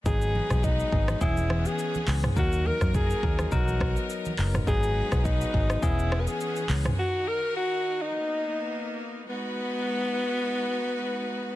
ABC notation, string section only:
X:1
M:4/4
L:1/8
Q:"Swing 16ths" 1/4=104
K:G#m
V:1 name="String section"
[G,DFB]4 [E,B,CG]4 | [D,DFA]4 [B,A]4 | [G,DFB]4 [E,B,CG]4 | [D,DFA]4 [A,B,]4 |
[G,DFB]8 |]